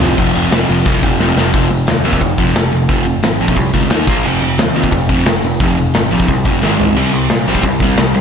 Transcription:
0.00 picked electric bass F1, overdriven electric guitar F2 C3 F3, floor tom
0.17 picked electric bass F1, overdriven electric guitar F2 C3 F3, kick, crash
0.34 picked electric bass F1, overdriven electric guitar F2 C3 F3, open hi-hat
0.51 picked electric bass F1, overdriven electric guitar F2 C3 F3, snare, open hi-hat
0.69 picked electric bass F1, overdriven electric guitar F2 C3 F3, open hi-hat
0.86 picked electric bass C2, overdriven electric guitar F2 C3 F3, kick, open hi-hat
1.03 picked electric bass F1, overdriven electric guitar F2 C3 F3, kick, open hi-hat
1.19 picked electric bass F1, overdriven electric guitar F2 C3 F3, snare
1.36 picked electric bass F1, overdriven electric guitar F2 C3 F3, snare
1.52 picked electric bass F1, overdriven electric guitar F2 C3 F3, kick, open hi-hat
1.70 picked electric bass F1, overdriven electric guitar F2 C3, open hi-hat
1.87 picked electric bass D#2, overdriven electric guitar F2 C3, snare, open hi-hat
2.04 picked electric bass D#2, overdriven electric guitar F2 C3 F3, open hi-hat
2.13 kick
2.21 picked electric bass F1, overdriven electric guitar F2 C3, kick, open hi-hat
2.38 overdriven electric guitar F2 C3 F3, kick, open hi-hat
2.55 picked electric bass F1, overdriven electric guitar F2 C3, snare, open hi-hat
2.72 picked electric bass F1, overdriven electric guitar F2 C3, open hi-hat
2.89 picked electric bass F1, overdriven electric guitar F2 C3 F3, kick, open hi-hat
3.05 overdriven electric guitar F2 C3, open hi-hat
3.23 picked electric bass G#1, overdriven electric guitar F2 C3, snare, open hi-hat
3.40 picked electric bass A#1, overdriven electric guitar F2 C3 F3, open hi-hat
3.48 kick
3.56 picked electric bass C2, overdriven electric guitar F2 C3, kick, open hi-hat
3.74 picked electric bass C#2, overdriven electric guitar F2 C3 F3, kick, open hi-hat
3.90 picked electric bass D#2, overdriven electric guitar D#3 A#3 D#4, snare, open hi-hat
4.07 picked electric bass A#1, overdriven electric guitar A#2 F3 A#3, kick, open hi-hat
4.24 picked electric bass F1, overdriven electric guitar F2 C3 F3, crash
4.42 picked electric bass F1, overdriven electric guitar F2 C3, open hi-hat
4.58 picked electric bass D#2, overdriven electric guitar F2 C3, snare, open hi-hat
4.75 picked electric bass D#2, overdriven electric guitar F2 C3 F3, open hi-hat
4.84 kick
4.92 picked electric bass F1, overdriven electric guitar F2 C3, kick, open hi-hat
5.09 overdriven electric guitar F2 C3 F3, kick, open hi-hat
5.26 picked electric bass F1, overdriven electric guitar F2 C3, snare, open hi-hat
5.43 picked electric bass F1, overdriven electric guitar F2 C3, open hi-hat
5.60 picked electric bass F1, overdriven electric guitar F2 C3 F3, kick, open hi-hat
5.77 overdriven electric guitar F2 C3, open hi-hat
5.94 picked electric bass G#1, overdriven electric guitar F2 C3, snare, open hi-hat
6.11 picked electric bass A#1, overdriven electric guitar F2 C3 F3, open hi-hat
6.20 kick
6.28 picked electric bass C2, overdriven electric guitar F2 C3, kick, open hi-hat
6.45 picked electric bass F1, overdriven electric guitar F2 C3 F3, kick, open hi-hat
6.61 picked electric bass G#1, overdriven electric guitar G#2 D#3 G#3, snare
6.78 picked electric bass G#1, overdriven electric guitar G#2 D#3 G#3, floor tom
6.95 picked electric bass C2, overdriven electric guitar C3 G3 C4, open hi-hat, crash
7.12 picked electric bass C2, overdriven electric guitar C3 G3, open hi-hat
7.29 picked electric bass A#2, overdriven electric guitar C3 G3, snare, open hi-hat
7.46 picked electric bass A#1, overdriven electric guitar C3 G3 C4, open hi-hat
7.55 kick
7.63 picked electric bass C2, overdriven electric guitar C3 G3, kick, open hi-hat
7.80 overdriven electric guitar C3 G3 C4, kick, open hi-hat
7.97 picked electric bass C2, overdriven electric guitar C3 G3, snare, open hi-hat
8.14 picked electric bass C2, overdriven electric guitar C3 G3, open hi-hat

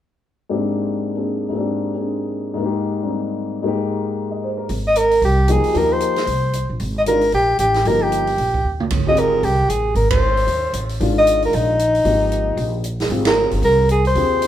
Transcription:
0.49 grand piano G#2 G#3 A#3 C4 D4 G4
1.16 grand piano A#3 C4 D4 G#4
1.49 grand piano G#2 G#3
1.53 grand piano A#3 C4
1.58 grand piano D4 G4
1.95 grand piano A#3 C4 D4 G#4
2.54 grand piano G#2 G#3
2.59 grand piano A#3 D#4
2.65 grand piano G4
3.03 grand piano G3 C4 D#4
3.63 grand piano G#2 G#3 A#3 D#4
3.68 grand piano G4
4.31 grand piano D#5
4.44 grand piano C5
4.57 grand piano A#4
4.69 upright bass G#1, open hi-hat
4.87 soprano saxophone D#5
4.96 soprano saxophone A#4, closed hi-hat
5.11 open hi-hat
5.22 upright bass C2, soprano saxophone G4, open hi-hat
5.48 grand piano F3 A#3 D#4 G4, soprano saxophone G#4, closed hi-hat
5.64 open hi-hat
5.74 upright bass D#2, grand piano F3 A#3 D#4 G4, soprano saxophone A#4, open hi-hat
5.93 soprano saxophone C5
6.00 closed hi-hat
6.16 snare, open hi-hat
6.27 upright bass C2, open hi-hat
6.53 closed hi-hat
6.69 upright bass A#1
6.80 upright bass G#1, open hi-hat
6.98 soprano saxophone D#5
7.06 grand piano D#3 G#3 D4 F4, soprano saxophone A#4, closed hi-hat
7.21 open hi-hat
7.32 upright bass A#1, soprano saxophone G4, open hi-hat
7.59 upright bass A1, soprano saxophone G4, closed hi-hat
7.74 snare, open hi-hat
7.85 upright bass G1, grand piano F3 A#3 D#4 G4, soprano saxophone A#4, open hi-hat
8.03 soprano saxophone G4
8.12 closed hi-hat
8.27 open hi-hat
8.38 upright bass A#1, open hi-hat
8.54 kick
8.64 upright bass D#2
8.80 mid tom
8.90 upright bass G#1, kick, ride
9.06 grand piano C4 F4 G4 G#4, soprano saxophone D#5, kick
9.17 soprano saxophone A#4, closed hi-hat
9.43 upright bass C2, soprano saxophone G4, open hi-hat
9.69 upright bass A1, soprano saxophone G#4, closed hi-hat
9.95 upright bass G#1, soprano saxophone A#4, open hi-hat
10.11 soprano saxophone C5, kick, ride
10.37 open hi-hat
10.47 upright bass D#2, open hi-hat
10.73 upright bass A1, closed hi-hat
10.89 open hi-hat
11.00 upright bass G#1, grand piano D#3 G#3 D4 F4, open hi-hat
11.18 soprano saxophone D#5
11.27 closed hi-hat
11.42 soprano saxophone A#4, open hi-hat
11.53 upright bass A#1, soprano saxophone D#4, open hi-hat
11.79 closed hi-hat
11.95 open hi-hat
12.05 upright bass G#1, grand piano F3 A#3 D#4 G4, open hi-hat
12.32 closed hi-hat
12.57 upright bass A#1, open hi-hat
12.84 closed hi-hat
13.00 snare, open hi-hat
13.10 upright bass G#1, grand piano C4 F4 G4 G#4, open hi-hat
13.25 soprano saxophone A#4, snare, ride
13.51 upright bass G1, open hi-hat
13.62 upright bass C2, soprano saxophone A#4, open hi-hat
13.89 soprano saxophone G#4, closed hi-hat
14.05 soprano saxophone C5, open hi-hat
14.15 upright bass D#2, grand piano C4 F4 G4 G#4, open hi-hat
14.42 closed hi-hat

